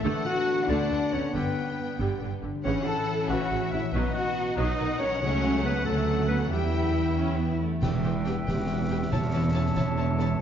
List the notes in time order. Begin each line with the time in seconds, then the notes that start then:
Already playing: A3 A4
0.04 D2 D3 A3 B3 A4 F#5
0.15 D4
0.25 F#4 B4 F#5
0.36 A4
0.47 D5
0.58 B5
0.68 D2 D3 A3 D4 D5 F#5 A5
0.90 D2 D3 A4
1.01 B4
1.11 D2 D3 F#3 C#4 D4 C#5
1.23 A3
1.34 G1 G2 D3 G3 B3 B4 G5
1.45 G3
1.56 D4
1.78 G4
1.89 D5
1.99 G1 D3 G3 B5
2.11 D5
2.21 G1 D3 B4
2.32 D4
2.43 G1 D3 G3
2.53 D3
2.64 A1 A2 C#3 E3 C#4 E4 C#5 F#5
2.86 E3 A4 A5
2.97 C#5
3.08 C#4
3.19 C#5
3.29 A1 C#3 E3 F#4 E5 F#5 C#6
3.41 C#5
3.51 A1 C#3 C#4
3.62 E3
3.72 A1 C#3 C#4 E4 E5
3.83 E3
3.92 B1 B2 F#3 B3 D#4 B4 D#5
4.04 D#4
4.14 F#4 F#5
4.18 F#4
4.26 B4
4.35 D#5
4.46 F#5
4.57 B1 F#3 D#4 D#5 F#5 B5
4.67 F#5
4.79 B1 D#3 F#3
4.89 F#4
4.99 B1 D#3 F#3 C#4 D#4 C#5
5.11 F#3
5.21 C#2 C#3 F#3 A3 C#4 C#5
5.33 C#4
5.43 F#4
5.53 A4
5.64 B3 B4 C#5
5.74 F#5
5.85 D2 F#3 A3 C#4 A4 A5
5.96 F#5
6.07 A4
6.19 F#4
6.28 B3 C#4 B4
6.41 A3
6.51 E2 E3 G3 B3 E4 E5 G5
6.64 B3
6.86 B4
6.97 G4
7.08 G5
7.17 C#4 B5
7.39 B3 B4
7.51 G4
7.61 A3 B3
7.73 E4
7.82 E1 E2 E3 G4 B4 E5 G5, concert bass drum, snare, crash
8.04 E4 G4 B4 G5
8.25 B3 G4 B4 G5, snare
8.47 E1 E2 G4 B4 G5, concert bass drum, snare
8.68 G4 G5
8.73 B4
8.89 B3 G4 B4 G5
9.11 E1 E2 E3 E4 C#5 A5, concert bass drum, snare
9.33 C#4 E4 C#5 A5
9.54 C#4 E4 A4 C#5 A5
9.75 E1 E2 E4 C#5 A5, concert bass drum, snare
9.96 E4 C#5 E5 A5
10.19 C#4 E4 A4 C#5 A5, snare